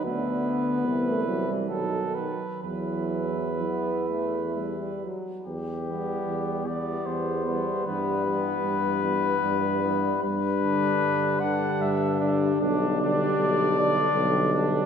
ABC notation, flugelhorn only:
X:1
M:3/4
L:1/8
Q:1/4=75
K:Em
V:1 name="Flugelhorn"
B4 A B | B4- B z | z B,2 B,2 B, | B, B,2 B,2 B, |
z D2 D2 D | D D2 D2 D |]